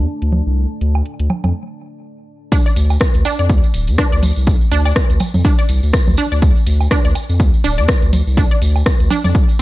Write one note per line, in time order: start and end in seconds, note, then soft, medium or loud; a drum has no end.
0.00 1.54 A3 medium
0.00 1.54 D4 medium
0.00 1.54 D5 medium
0.00 1.54 A5 medium
0.22 0.42 D2 medium
0.22 closed hi-hat soft
0.32 low conga medium
0.46 0.66 C2 medium
0.81 1.02 D2 medium
0.81 closed hi-hat soft
0.95 low woodblock medium
1.06 closed hi-hat soft
1.20 1.28 D2 medium
1.20 closed hi-hat soft
1.30 low conga medium
1.30 low woodblock medium
1.44 1.53 F2 medium
1.44 closed hi-hat soft
1.44 low conga medium
1.44 low woodblock soft
2.52 2.61 D4 loud
2.52 kick loud
2.52 tambourine medium
2.66 2.71 D5 medium
2.66 tambourine soft
2.76 2.97 D2 loud
2.76 closed hi-hat medium
2.76 tambourine medium
2.90 tambourine soft
2.90 low woodblock medium
3.00 kick loud
3.00 cross-stick loud
3.00 closed hi-hat soft
3.00 tambourine soft
3.14 3.23 D2 medium
3.14 closed hi-hat soft
3.14 tambourine soft
3.25 3.34 D4 loud
3.25 closed hi-hat loud
3.25 tambourine medium
3.25 low woodblock medium
3.39 3.51 F2 medium
3.39 3.44 D5 medium
3.39 tambourine soft
3.49 3.61 D2 loud
3.49 kick loud
3.49 tambourine soft
3.64 tambourine soft
3.74 3.89 D1 medium
3.74 closed hi-hat medium
3.74 tambourine medium
3.87 3.97 F2 medium
3.87 closed hi-hat soft
3.87 tambourine soft
3.98 4.08 D4 loud
3.98 kick loud
3.98 cross-stick medium
3.98 tambourine medium
4.12 4.32 D2 medium
4.12 4.17 D5 medium
4.12 closed hi-hat soft
4.12 tambourine soft
4.23 closed hi-hat medium
4.23 tambourine medium
4.23 low conga medium
4.36 4.57 C2 medium
4.36 tambourine soft
4.47 kick loud
4.47 tambourine medium
4.61 tambourine soft
4.71 4.92 D2 loud
4.71 4.81 D4 loud
4.71 closed hi-hat loud
4.71 tambourine medium
4.85 4.90 D5 medium
4.85 tambourine soft
4.85 low woodblock medium
4.96 kick loud
4.96 cross-stick loud
4.96 closed hi-hat soft
4.96 tambourine medium
5.10 5.19 D2 medium
5.10 closed hi-hat soft
5.10 tambourine soft
5.20 closed hi-hat loud
5.20 tambourine medium
5.20 low conga loud
5.20 low woodblock medium
5.34 5.43 F2 loud
5.34 tambourine soft
5.34 low conga loud
5.45 5.54 D4 loud
5.45 kick loud
5.45 tambourine medium
5.59 5.63 D5 medium
5.59 closed hi-hat soft
5.59 tambourine soft
5.69 5.81 C2 medium
5.69 closed hi-hat medium
5.69 tambourine medium
5.83 5.92 D2 medium
5.83 tambourine soft
5.93 kick loud
5.93 cross-stick medium
5.93 tambourine medium
6.07 6.16 D2 loud
6.07 tambourine soft
6.07 low conga medium
6.17 6.27 D4 loud
6.17 closed hi-hat loud
6.17 tambourine loud
6.32 6.52 D2 medium
6.32 6.36 D5 medium
6.32 tambourine soft
6.42 kick loud
6.42 tambourine medium
6.57 tambourine soft
6.67 6.88 D2 loud
6.67 closed hi-hat loud
6.67 tambourine loud
6.81 tambourine soft
6.81 low woodblock medium
6.91 7.00 D4 loud
6.91 kick loud
6.91 cross-stick medium
6.91 closed hi-hat soft
6.91 tambourine medium
7.04 7.14 D2 medium
7.04 7.10 D5 medium
7.04 closed hi-hat soft
7.04 tambourine soft
7.15 closed hi-hat loud
7.15 tambourine loud
7.15 low woodblock medium
7.29 7.41 F2 loud
7.29 tambourine soft
7.40 7.51 D2 loud
7.40 kick loud
7.40 tambourine medium
7.54 tambourine soft
7.64 7.80 D1 medium
7.64 7.73 D4 loud
7.64 closed hi-hat loud
7.64 tambourine loud
7.78 7.87 F2 medium
7.78 7.83 D5 medium
7.78 closed hi-hat soft
7.78 tambourine soft
7.88 kick loud
7.88 cross-stick loud
7.88 tambourine medium
8.02 8.22 D2 medium
8.02 closed hi-hat soft
8.02 tambourine soft
8.13 closed hi-hat medium
8.13 tambourine loud
8.13 low conga medium
8.27 8.47 C2 medium
8.27 tambourine soft
8.37 8.47 D4 loud
8.37 kick loud
8.37 tambourine medium
8.51 8.56 D5 medium
8.51 tambourine soft
8.62 8.83 D2 loud
8.62 closed hi-hat loud
8.62 tambourine medium
8.76 tambourine soft
8.76 low woodblock medium
8.86 kick loud
8.86 cross-stick medium
8.86 closed hi-hat soft
8.86 tambourine medium
9.00 9.09 D2 medium
9.00 closed hi-hat soft
9.00 tambourine soft
9.10 9.20 D4 loud
9.10 closed hi-hat loud
9.10 tambourine medium
9.10 low conga medium
9.10 low woodblock medium
9.24 9.33 F2 loud
9.24 9.29 D5 medium
9.24 tambourine soft
9.24 low conga medium
9.35 kick loud
9.35 tambourine medium
9.49 closed hi-hat soft
9.49 tambourine soft